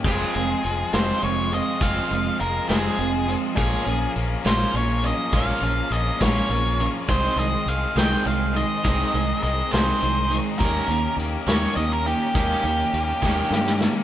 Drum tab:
CC |x-----------|------------|------------|------------|
HH |--x-x-x-x-x-|x-x-x-x-x-x-|x-x-x-x-x-x-|x-x-x-x-x-x-|
SD |------o-----|------o-----|------o-----|------o-----|
BD |o-----------|o-----------|o-----------|o-----o-----|

CC |------------|------------|------------|------------|
HH |x-x-x-x-x-x-|x-x-x-x-x-x-|x-x-x-x-x-x-|x-x-x-------|
SD |------o-----|------o-----|------o-----|------o-ooo-|
BD |o-----------|o-----------|o-----------|o-----o-----|